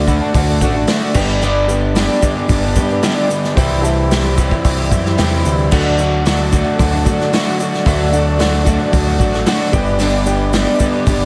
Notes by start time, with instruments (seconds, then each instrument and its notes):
Already playing: picked electric bass D2, grand piano F#4 A4 D5 E5, tonewheel organ F#4 A4 D5
0.07 twelve-string acoustic guitar D3 A3 D4 F#4, grand piano B5, kick, shaker
0.20 twelve-string acoustic guitar A3 D4 F#4, grand piano A5
0.34 picked electric bass D2, clean electric guitar D3 A3 D4 F#4, grand piano A5, kick, open hi-hat, shaker
0.47 twelve-string acoustic guitar A3 D4 F#4
0.60 picked electric bass A1, twelve-string acoustic guitar D3 A3 D4 F#4, kick, shaker
0.74 twelve-string acoustic guitar A3 D4 F#4, grand piano F#5
0.87 twelve-string acoustic guitar D3 A3 D4 F#4, grand piano E5, snare, open hi-hat, shaker
1.14 picked electric bass G1, clean electric guitar G2 D3, twelve-string acoustic guitar G3 B3 D4 G4, grand piano G4 B4 D5 F#5 G5, tonewheel organ G4 B4 D5, kick, crash, shaker
1.28 shaker
1.41 twelve-string acoustic guitar G2 D3 G3 B3 D4 G4, shaker
1.68 twelve-string acoustic guitar G3 B3 D4, grand piano G4 B4 D5 G5, clean electric guitar G4, shaker
1.72 twelve-string acoustic guitar G4
1.95 twelve-string acoustic guitar G2 D3 G3 B3 D4 G4, snare, open hi-hat, shaker
2.21 clean electric guitar G2 D3, twelve-string acoustic guitar G3 B3 D4 G4, kick, shaker
2.35 twelve-string acoustic guitar G3 B3 D4 G4
2.49 picked electric bass G1, clean electric guitar G3 B3 D4 G4, kick, open hi-hat, shaker
2.62 twelve-string acoustic guitar G3 B3 D4 G4
2.75 picked electric bass G2, twelve-string acoustic guitar G3 B3 D4 G4, kick, shaker
2.89 twelve-string acoustic guitar G3 B3 D4 G4, shaker
3.03 twelve-string acoustic guitar G2 D3 G3 B3 D4 G4, snare, open hi-hat, shaker
3.29 twelve-string acoustic guitar G3 B3 D4 G4, shaker
3.44 snare, shaker
3.55 picked electric bass C2, twelve-string acoustic guitar C3 E3 G3 E4 G4, grand piano G4 C5 E5 G5, tonewheel organ G4 C5 E5, kick, open hi-hat, shaker
3.82 twelve-string acoustic guitar E3 G3, grand piano G4 C5 E5 A5, shaker
3.86 twelve-string acoustic guitar E4 G4
4.11 twelve-string acoustic guitar C3 E3 G3 E4 G4, snare, open hi-hat, shaker
4.38 clean electric guitar C3, twelve-string acoustic guitar E3 G3 E4 G4, kick, shaker
4.50 twelve-string acoustic guitar G3 E4 G4, kick, shaker
4.64 picked electric bass C2, clean electric guitar E3 G3 E4 G4, kick, open hi-hat, shaker
4.77 twelve-string acoustic guitar G3 E4 G4
4.90 picked electric bass F#2, twelve-string acoustic guitar E3 G3 E4 G4, grand piano E5, kick, shaker
5.04 twelve-string acoustic guitar G3 E4 G4, snare
5.17 picked electric bass E2, twelve-string acoustic guitar C3 E3 G3 E4 G4, grand piano G5, snare, open hi-hat, shaker
5.43 picked electric bass D2, twelve-string acoustic guitar E3 G3 E4 G4, shaker
5.58 shaker
5.71 picked electric bass D2, twelve-string acoustic guitar D3 F#3 A3 D4 F#4, grand piano F#4 A4 D5 F#5, tonewheel organ F#4 A4 D5, kick, crash, shaker
5.97 twelve-string acoustic guitar F#3 A3 D4, grand piano F#4 A4 D5 F#5, shaker
6.02 twelve-string acoustic guitar F#4
6.25 twelve-string acoustic guitar D3 F#3 A3 D4 F#4, snare, open hi-hat, shaker
6.52 clean electric guitar D3, twelve-string acoustic guitar F#3 A3 D4 F#4, kick, shaker
6.64 twelve-string acoustic guitar A3 D4 F#4
6.78 picked electric bass D2, clean electric guitar F#3 A3 D4 F#4, kick, open hi-hat, shaker
6.91 twelve-string acoustic guitar A3 D4 F#4
7.05 picked electric bass D3, twelve-string acoustic guitar F#3 A3 D4 F#4, kick, shaker
7.19 twelve-string acoustic guitar A3 D4 F#4, snare, shaker
7.33 twelve-string acoustic guitar D3 F#3 A3 D4 F#4, snare, open hi-hat, shaker
7.59 twelve-string acoustic guitar F#3 A3 D4 F#4, shaker
7.74 snare, shaker
7.86 picked electric bass D2, twelve-string acoustic guitar D3 F#3 A3 D4 F#4, grand piano F#4 A4 D5 E5, kick, open hi-hat, shaker
8.11 twelve-string acoustic guitar F#3 A3 D4, grand piano F#4 A4 D5 F#5, clean electric guitar F#4, shaker
8.16 twelve-string acoustic guitar F#4
8.39 twelve-string acoustic guitar D3 F#3 A3 D4 F#4, snare, open hi-hat, shaker
8.65 clean electric guitar D3, twelve-string acoustic guitar F#3 A3 D4 F#4, kick, shaker
8.79 twelve-string acoustic guitar A3 D4 F#4
8.92 picked electric bass D2, clean electric guitar F#3 A3 D4 F#4, kick, open hi-hat, shaker
9.05 twelve-string acoustic guitar A3 D4 F#4
9.19 picked electric bass A1, twelve-string acoustic guitar F#3 A3 D4 F#4, kick, shaker
9.32 twelve-string acoustic guitar A3 D4 F#4, snare, shaker
9.46 twelve-string acoustic guitar D3 F#3 A3 D4 F#4, snare, open hi-hat, shaker
9.72 picked electric bass G1, clean electric guitar G2 D3, twelve-string acoustic guitar G3 B3 D4 G4, grand piano G4 B4 D5 G5, tonewheel organ G4 B4 D5, kick, shaker
9.86 shaker
9.99 twelve-string acoustic guitar G2 D3 G3 B3 D4 G4, open hi-hat, shaker
10.26 twelve-string acoustic guitar G3 B3 D4 G4, grand piano G4 B4 D5 G5, shaker
10.53 twelve-string acoustic guitar G2 D3 G3 B3 D4 G4, snare, open hi-hat, shaker
10.79 clean electric guitar G2 D3, twelve-string acoustic guitar G3 B3 D4 G4, kick, shaker
10.93 twelve-string acoustic guitar G3 B3 D4 G4
11.06 picked electric bass G1, clean electric guitar G3 B3 D4 G4, kick, open hi-hat, shaker
11.20 twelve-string acoustic guitar D4 G4